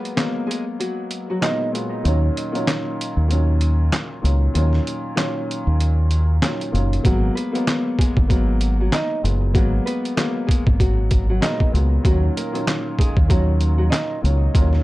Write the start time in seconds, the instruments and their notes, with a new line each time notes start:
Already playing: upright piano F#3 G#3 A#3 B3, nylon-string guitar B3 B4
0.05 closed hi-hat
0.16 upright piano F#3 G#3 A#3 B3, snare, clap, closed hi-hat
0.47 nylon-string guitar G#3 G#4
0.51 closed hi-hat
0.80 nylon-string guitar F#3 F#4, closed hi-hat
1.11 closed hi-hat
1.30 nylon-string guitar F#3 F#4
1.40 upright piano A#2 F#3 G#3 B3, nylon-string guitar D#4 D#5, snare, clap, closed hi-hat
1.72 upright piano A#2 F#3 G#3 B3, closed hi-hat
2.03 fingered electric bass D#2, upright piano A#2 D#3 F#3 C#4, closed hi-hat
2.37 closed hi-hat
2.52 upright piano A#2 D#3 F#3 C#4, closed hi-hat
2.67 snare, clap, closed hi-hat
3.01 closed hi-hat
3.17 fingered electric bass D#2
3.28 upright piano A#2 D#3 F#3 C#4, closed hi-hat
3.61 closed hi-hat
3.92 snare, clap, closed hi-hat
4.22 fingered electric bass C#2, upright piano A#2 D#3 F#3 C#4, closed hi-hat
4.54 fingered electric bass D#2, upright piano A#2 D#3 F#3 C#4, closed hi-hat
4.73 snare
4.87 closed hi-hat
5.15 upright piano A#2 D#3 F#3 C#4, snare, clap, closed hi-hat
5.51 closed hi-hat
5.67 fingered electric bass D#2
5.80 closed hi-hat
6.11 closed hi-hat
6.41 upright piano A#2 D#3 F#3 C#4, snare, clap, closed hi-hat
6.61 closed hi-hat
6.72 fingered electric bass F#1, upright piano A#2 D#3 F#3 C#4, closed hi-hat
6.93 closed hi-hat
7.03 fingered electric bass G#1, upright piano F#3 G#3 A#3 B3, nylon-string guitar F#3 F#4, kick, closed hi-hat
7.35 nylon-string guitar B3 B4, closed hi-hat
7.52 upright piano F#3 G#3 A#3 B3, closed hi-hat
7.67 snare, clap, closed hi-hat
7.99 nylon-string guitar G#3 G#4, kick, closed hi-hat
8.17 fingered electric bass G#1, kick
8.28 upright piano F#3 G#3 A#3 B3, nylon-string guitar F#3 F#4, kick, closed hi-hat
8.61 closed hi-hat
8.80 nylon-string guitar F#3 F#4
8.92 nylon-string guitar D#4 D#5, snare, clap, closed hi-hat
9.22 fingered electric bass F#1, upright piano A#2 F#3 G#3 B3, closed hi-hat
9.53 fingered electric bass G#1, upright piano F#3 G#3 A#3 B3, nylon-string guitar F#3 F#4, kick, closed hi-hat
9.86 nylon-string guitar B3 B4, closed hi-hat
10.05 closed hi-hat
10.16 upright piano F#3 G#3 A#3 B3, snare, clap, closed hi-hat
10.47 nylon-string guitar G#3 G#4, kick
10.51 closed hi-hat
10.67 fingered electric bass G#1, kick
10.80 nylon-string guitar F#3 F#4, kick, closed hi-hat
11.11 kick, closed hi-hat
11.29 nylon-string guitar F#3 F#4
11.40 upright piano A#2 F#3 G#3 B3, nylon-string guitar D#4 D#5, snare, clap, closed hi-hat
11.60 kick
11.72 fingered electric bass C#2, upright piano A#2 F#3 G#3 B3, closed hi-hat
12.03 fingered electric bass D#2, upright piano A#2 D#3 F#3 C#4, nylon-string guitar F#3 F#4, kick, closed hi-hat
12.37 nylon-string guitar A#3 A#4, closed hi-hat
12.52 upright piano A#2 D#3 F#3 C#4, closed hi-hat
12.67 snare, clap, closed hi-hat
12.99 nylon-string guitar G#3 G#4, kick, closed hi-hat
13.17 fingered electric bass D#2, kick
13.28 upright piano A#2 D#3 F#3 C#4, nylon-string guitar F#3 F#4, kick, closed hi-hat
13.61 closed hi-hat
13.78 nylon-string guitar F#3 F#4
13.90 nylon-string guitar D#4 D#5, snare, clap, closed hi-hat
14.22 fingered electric bass C#2, upright piano A#2 D#3 F#3 C#4, closed hi-hat
14.54 fingered electric bass D#2, upright piano A#2 D#3 F#3 C#4, kick, closed hi-hat
14.73 snare